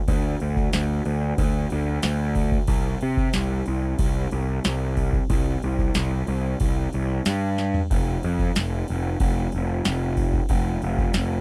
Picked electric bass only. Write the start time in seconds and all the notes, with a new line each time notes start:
0.08 D2
0.41 D2
0.74 D2
1.06 D2
1.38 D2
1.72 D2
2.04 D2
2.68 C2
3.03 C3
3.35 C2
3.68 C2
3.99 C2
4.32 C2
4.65 C2
5.30 C2
5.64 C2
5.96 C2
6.28 C2
6.60 C2
6.94 C2
7.26 G2
7.91 F1
8.24 F2
8.57 F1
8.90 F1
9.20 F1
9.55 F1
9.86 F1
10.50 F1
10.83 F1
11.16 F1